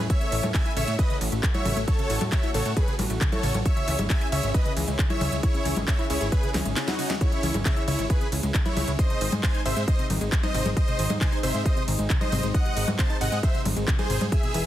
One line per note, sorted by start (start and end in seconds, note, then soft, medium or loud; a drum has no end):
0.00 3.62 A3 medium
0.00 3.62 C#4 medium
0.00 0.95 E4 medium
0.10 0.45 C#5 medium
0.10 0.45 E5 loud
0.10 kick loud
0.10 closed hi-hat medium
0.21 0.24 C#3 medium
0.21 closed hi-hat soft
0.32 0.41 A1 medium
0.32 0.36 E3 medium
0.32 open hi-hat loud
0.32 ride medium
0.43 0.52 A2 medium
0.43 0.48 A3 medium
0.43 closed hi-hat medium
0.43 high conga medium
0.54 0.59 C#3 medium
0.54 0.72 E5 medium
0.54 0.72 G#5 loud
0.54 kick loud
0.54 clap loud
0.54 closed hi-hat medium
0.65 0.72 E4 loud
0.65 closed hi-hat soft
0.77 0.86 A1 loud
0.77 0.81 C#3 loud
0.77 0.94 C#5 medium
0.77 0.94 E5 loud
0.77 open hi-hat loud
0.77 ride medium
0.88 0.97 A2 medium
0.88 0.94 A3 medium
0.88 closed hi-hat soft
0.99 3.63 F#4 medium
0.99 1.16 B4 medium
0.99 1.16 D#5 medium
0.99 kick loud
0.99 closed hi-hat medium
1.10 1.13 C#3 medium
1.10 closed hi-hat soft
1.21 1.30 A1 loud
1.21 1.25 E3 medium
1.21 open hi-hat loud
1.21 ride medium
1.32 1.41 A1 medium
1.32 1.36 A3 medium
1.32 closed hi-hat medium
1.43 1.48 C#3 medium
1.43 kick loud
1.43 clap loud
1.43 closed hi-hat medium
1.54 1.61 E4 loud
1.54 1.81 C#5 medium
1.54 1.81 E5 loud
1.54 closed hi-hat soft
1.54 high conga medium
1.66 1.75 A1 loud
1.66 1.70 C#3 loud
1.66 open hi-hat medium
1.66 ride medium
1.66 high conga medium
1.77 1.86 A1 medium
1.77 1.83 A3 medium
1.77 closed hi-hat medium
1.88 2.23 A4 medium
1.88 2.23 C#5 loud
1.88 kick loud
1.88 closed hi-hat medium
1.99 2.01 C#3 medium
1.99 closed hi-hat soft
2.10 2.19 A1 medium
2.10 2.14 E3 medium
2.10 open hi-hat loud
2.10 ride medium
2.21 2.30 A2 medium
2.21 2.25 A3 medium
2.21 closed hi-hat medium
2.21 high conga medium
2.32 2.36 C#3 medium
2.32 2.50 C#5 medium
2.32 2.50 E5 medium
2.32 kick loud
2.32 clap loud
2.32 closed hi-hat medium
2.43 2.50 E4 loud
2.43 closed hi-hat soft
2.54 2.63 A1 medium
2.54 2.59 C#3 loud
2.54 2.72 A4 medium
2.54 2.72 C#5 medium
2.54 open hi-hat loud
2.54 ride medium
2.66 2.75 A2 medium
2.66 2.72 A3 medium
2.66 closed hi-hat medium
2.77 2.94 G#4 medium
2.77 2.94 B4 medium
2.77 kick loud
2.77 closed hi-hat medium
2.88 2.90 C#3 medium
2.88 closed hi-hat soft
2.99 3.08 A1 medium
2.99 3.03 E3 medium
2.99 open hi-hat loud
2.99 ride medium
2.99 high conga medium
3.10 3.19 A1 medium
3.10 3.14 A3 medium
3.10 closed hi-hat medium
3.21 3.25 C#3 medium
3.21 kick loud
3.21 clap loud
3.21 closed hi-hat medium
3.32 3.39 E4 loud
3.32 3.59 A4 medium
3.32 3.59 C#5 loud
3.32 closed hi-hat soft
3.32 high conga medium
3.43 3.52 A1 loud
3.43 3.48 C#3 loud
3.43 open hi-hat medium
3.43 ride medium
3.54 3.63 A1 medium
3.54 3.61 A3 medium
3.54 closed hi-hat medium
3.54 high conga medium
3.66 8.95 C#3 medium
3.66 8.95 C#4 medium
3.66 8.95 E4 medium
3.66 8.95 G#4 medium
3.66 4.01 C#5 medium
3.66 4.01 E5 loud
3.66 kick loud
3.66 closed hi-hat medium
3.77 3.79 C#3 medium
3.77 closed hi-hat soft
3.88 3.97 C#2 loud
3.88 3.92 E3 medium
3.88 open hi-hat loud
3.88 ride medium
3.99 4.08 G#1 medium
3.99 4.03 G#3 medium
3.99 closed hi-hat medium
3.99 high conga medium
4.10 4.14 C#3 medium
4.10 4.28 E5 medium
4.10 4.27 G#5 medium
4.10 kick loud
4.10 clap loud
4.10 closed hi-hat medium
4.21 4.27 E4 loud
4.21 closed hi-hat soft
4.32 4.41 C#2 medium
4.32 4.36 C#3 loud
4.32 4.50 C#5 medium
4.32 4.50 E5 medium
4.32 open hi-hat medium
4.32 ride medium
4.43 4.52 G#1 medium
4.43 4.50 G#3 medium
4.43 closed hi-hat medium
4.54 4.72 B4 medium
4.54 4.72 D#5 medium
4.54 kick loud
4.54 closed hi-hat medium
4.66 4.68 C#3 medium
4.66 closed hi-hat soft
4.77 4.86 C#2 loud
4.77 4.81 E3 medium
4.77 open hi-hat loud
4.77 ride medium
4.88 4.97 C#2 medium
4.88 4.92 G#3 medium
4.88 closed hi-hat medium
4.99 5.03 C#3 medium
4.99 kick loud
4.99 clap loud
4.99 closed hi-hat medium
5.10 5.16 E4 loud
5.10 5.36 C#5 medium
5.10 5.36 E5 loud
5.10 closed hi-hat soft
5.10 high conga medium
5.21 5.30 C#2 medium
5.21 5.25 C#3 loud
5.21 open hi-hat medium
5.21 ride medium
5.21 high conga medium
5.32 5.41 C#2 medium
5.32 5.39 G#3 medium
5.32 closed hi-hat medium
5.43 5.78 E4 medium
5.43 5.78 C#5 loud
5.43 kick loud
5.43 closed hi-hat medium
5.54 5.57 C#3 medium
5.54 closed hi-hat soft
5.65 5.74 C#2 medium
5.65 5.70 E3 medium
5.65 open hi-hat loud
5.65 ride medium
5.77 5.86 G#1 medium
5.77 5.81 G#3 medium
5.77 closed hi-hat medium
5.77 high conga medium
5.88 5.92 C#3 medium
5.88 6.05 C#5 medium
5.88 6.05 E5 medium
5.88 kick loud
5.88 clap loud
5.88 closed hi-hat medium
5.99 6.05 E4 loud
5.99 closed hi-hat soft
6.10 6.19 C#2 medium
6.10 6.14 C#3 loud
6.10 6.28 E4 medium
6.10 6.28 C#5 medium
6.10 open hi-hat medium
6.10 ride medium
6.21 6.30 G#1 medium
6.21 6.27 G#3 medium
6.21 closed hi-hat medium
6.32 6.50 G#4 medium
6.32 6.50 B4 medium
6.32 kick loud
6.32 closed hi-hat medium
6.43 6.46 C#3 medium
6.43 closed hi-hat soft
6.54 6.63 C#2 loud
6.54 6.59 E3 medium
6.54 snare medium
6.54 open hi-hat loud
6.54 ride medium
6.54 high conga medium
6.65 6.75 G#1 medium
6.65 6.70 G#3 medium
6.65 closed hi-hat medium
6.77 6.81 C#3 medium
6.77 snare medium
6.77 clap loud
6.77 closed hi-hat medium
6.88 7.14 D#4 medium
6.88 6.94 E4 loud
6.88 7.14 F#4 medium
6.88 snare medium
6.88 closed hi-hat soft
6.88 high conga medium
6.99 7.03 C#3 loud
6.99 open hi-hat medium
6.99 ride medium
7.10 7.16 G#3 medium
7.10 snare medium
7.10 closed hi-hat medium
7.10 high conga medium
7.21 7.56 E4 medium
7.21 7.56 C#5 loud
7.21 kick loud
7.21 closed hi-hat medium
7.32 7.35 C#3 medium
7.32 closed hi-hat soft
7.43 7.52 C#2 loud
7.43 7.48 E3 medium
7.43 open hi-hat loud
7.43 ride medium
7.54 7.63 G#1 medium
7.54 7.59 G#3 medium
7.54 closed hi-hat medium
7.54 high conga medium
7.65 7.70 C#3 medium
7.65 7.83 C#5 medium
7.65 7.83 E5 medium
7.65 kick loud
7.65 clap loud
7.65 closed hi-hat medium
7.77 7.83 E4 loud
7.77 closed hi-hat soft
7.88 7.97 C#2 loud
7.88 7.92 C#3 loud
7.88 8.05 E4 medium
7.88 8.05 C#5 medium
7.88 open hi-hat loud
7.88 ride medium
7.99 8.08 G#1 medium
7.99 8.05 G#3 medium
7.99 closed hi-hat medium
8.10 8.27 G#4 medium
8.10 8.28 B4 medium
8.10 kick loud
8.10 closed hi-hat medium
8.21 8.24 C#3 medium
8.21 closed hi-hat soft
8.32 8.41 C#2 medium
8.32 8.36 E3 medium
8.32 open hi-hat loud
8.32 ride medium
8.43 8.52 C#2 medium
8.43 8.48 G#3 medium
8.43 closed hi-hat medium
8.54 8.59 C#3 medium
8.54 kick loud
8.54 clap loud
8.54 closed hi-hat medium
8.66 8.72 E4 loud
8.66 8.92 E4 medium
8.66 8.92 C#5 loud
8.66 closed hi-hat soft
8.66 high conga medium
8.77 8.86 C#2 loud
8.77 8.81 C#3 loud
8.77 open hi-hat medium
8.77 ride medium
8.77 high conga medium
8.88 8.97 C#2 medium
8.88 8.94 G#3 medium
8.88 closed hi-hat medium
8.99 14.28 G#3 medium
8.99 14.28 C4 medium
8.99 14.28 D#4 medium
8.99 9.34 C5 medium
8.99 9.34 D#5 loud
8.99 kick loud
8.99 closed hi-hat medium
9.10 9.13 C3 medium
9.10 closed hi-hat soft
9.21 9.30 G#1 medium
9.21 9.25 D#3 medium
9.21 open hi-hat loud
9.21 ride medium
9.32 9.41 G#2 medium
9.32 9.37 G#3 medium
9.32 closed hi-hat medium
9.32 high conga medium
9.43 9.48 C3 medium
9.43 9.61 C5 medium
9.43 9.61 G#5 medium
9.43 kick loud
9.43 clap loud
9.43 closed hi-hat medium
9.54 9.61 D#4 loud
9.54 closed hi-hat soft
9.65 9.75 G#1 loud
9.65 9.70 C3 loud
9.65 9.83 C5 medium
9.65 9.83 E5 medium
9.65 open hi-hat loud
9.65 ride medium
9.77 9.86 G#2 medium
9.77 9.83 G#3 medium
9.77 closed hi-hat medium
9.88 10.05 C5 medium
9.88 10.05 D#5 medium
9.88 kick loud
9.88 closed hi-hat medium
9.99 10.01 C3 medium
9.99 closed hi-hat soft
10.10 10.19 G#1 medium
10.10 10.14 D#3 medium
10.10 open hi-hat loud
10.10 ride medium
10.10 high conga medium
10.21 10.30 G#1 medium
10.21 10.25 G#3 medium
10.21 closed hi-hat medium
10.32 10.37 C3 medium
10.32 kick loud
10.32 clap loud
10.32 closed hi-hat medium
10.43 10.50 D#4 loud
10.43 10.70 C5 medium
10.43 10.70 D#5 loud
10.43 closed hi-hat soft
10.43 high conga medium
10.54 10.63 G#1 loud
10.54 10.59 C3 loud
10.54 open hi-hat loud
10.54 ride medium
10.65 10.74 G#1 medium
10.65 10.72 G#3 medium
10.65 closed hi-hat medium
10.65 high conga medium
10.77 11.12 C5 medium
10.77 11.12 D#5 loud
10.77 kick loud
10.77 closed hi-hat medium
10.88 10.90 C3 medium
10.88 closed hi-hat soft
10.99 11.08 G#1 medium
10.99 11.03 D#3 medium
10.99 open hi-hat loud
10.99 ride medium
11.10 11.19 G#2 medium
11.10 11.14 G#3 medium
11.10 closed hi-hat medium
11.10 high conga medium
11.21 11.25 C3 medium
11.21 11.39 C5 medium
11.21 11.39 G#5 medium
11.21 kick loud
11.21 clap loud
11.21 closed hi-hat medium
11.32 11.39 D#4 loud
11.32 closed hi-hat soft
11.43 11.52 G#1 loud
11.43 11.48 C3 loud
11.43 11.61 C5 medium
11.43 11.61 E5 loud
11.43 open hi-hat loud
11.43 ride medium
11.54 11.63 G#2 medium
11.54 11.61 G#3 medium
11.54 closed hi-hat medium
11.65 11.83 C5 medium
11.65 11.83 D#5 medium
11.65 kick loud
11.65 closed hi-hat medium
11.77 11.79 C3 medium
11.77 closed hi-hat soft
11.88 11.97 G#1 loud
11.88 11.92 D#3 medium
11.88 open hi-hat loud
11.88 ride medium
11.99 12.08 G#1 medium
11.99 12.03 G#3 medium
11.99 closed hi-hat medium
12.10 12.14 C3 medium
12.10 kick loud
12.10 clap loud
12.10 closed hi-hat medium
12.21 12.27 D#4 loud
12.21 12.47 C5 medium
12.21 12.47 D#5 loud
12.21 closed hi-hat soft
12.21 high conga medium
12.32 12.41 G#1 medium
12.32 12.36 C3 loud
12.32 open hi-hat loud
12.32 ride medium
12.32 high conga medium
12.43 12.52 G#1 medium
12.43 12.50 G#3 medium
12.43 closed hi-hat medium
12.54 12.89 D#5 medium
12.54 12.89 F#5 loud
12.54 kick loud
12.54 closed hi-hat medium
12.66 12.68 C3 medium
12.66 closed hi-hat soft
12.77 12.86 G#1 loud
12.77 12.81 D#3 medium
12.77 open hi-hat loud
12.77 ride medium
12.88 12.97 G#2 medium
12.88 12.92 G#3 medium
12.88 closed hi-hat soft
12.88 high conga medium
12.99 13.03 C3 medium
12.99 13.16 C5 medium
12.99 13.16 A5 medium
12.99 kick loud
12.99 clap loud
12.99 closed hi-hat medium
13.10 13.16 D#4 loud
13.10 closed hi-hat soft
13.21 13.30 G#1 medium
13.21 13.25 C3 loud
13.21 13.39 D#5 medium
13.21 13.39 F#5 medium
13.21 open hi-hat loud
13.21 ride medium
13.32 13.41 G#2 medium
13.32 13.39 G#3 medium
13.32 closed hi-hat medium
13.43 13.61 C5 medium
13.43 13.61 E5 medium
13.43 kick loud
13.43 closed hi-hat medium
13.54 13.57 C3 medium
13.54 closed hi-hat soft
13.65 13.74 G#1 medium
13.65 13.70 D#3 medium
13.65 open hi-hat loud
13.65 ride medium
13.65 high conga medium
13.77 13.86 G#1 medium
13.77 13.81 G#3 medium
13.77 closed hi-hat medium
13.88 13.92 C3 medium
13.88 kick loud
13.88 clap loud
13.88 closed hi-hat medium
13.99 14.05 D#4 loud
13.99 14.25 G#4 medium
13.99 14.25 C5 medium
13.99 closed hi-hat soft
13.99 high conga medium
14.10 14.19 G#1 loud
14.10 14.14 C3 loud
14.10 open hi-hat medium
14.10 ride medium
14.21 14.30 G#2 medium
14.21 14.27 G#3 medium
14.21 closed hi-hat medium
14.21 high conga medium
14.32 14.66 E3 medium
14.32 14.66 E4 medium
14.32 14.66 G#4 medium
14.32 14.66 B4 medium
14.32 14.66 E5 loud
14.32 kick loud
14.32 closed hi-hat medium
14.43 14.46 B2 medium
14.43 closed hi-hat soft
14.54 14.63 E1 medium
14.54 14.59 E3 medium
14.54 open hi-hat loud
14.54 ride medium